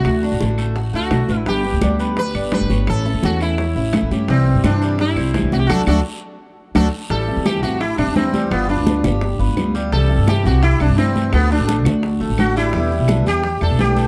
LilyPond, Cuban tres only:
\new Staff \with { instrumentName = "Cuban tres" } { \time 4/4 \key g \major \tempo 4 = 170 fis'8 d'4 a8 fis'8 a4 b'8 | b4 d'8 b4 d'4 cis''8~ | cis''8 a'4 e'8 cis''8 e'4 g'8 | g4 c'8 g4 c'4 fis'8 |
<a d' fis'>8 <a d' fis'>8 r2 <a d' fis'>8 r8 | g4 e'8 g'4 e'4 g8~ | g8 b4 g'4 b4 g8 | g4 e'8 g'4 e'4 r8 |
r8 a4 fis'4 a4 g8 | g4 d'8 g'4 d'4 a8 | }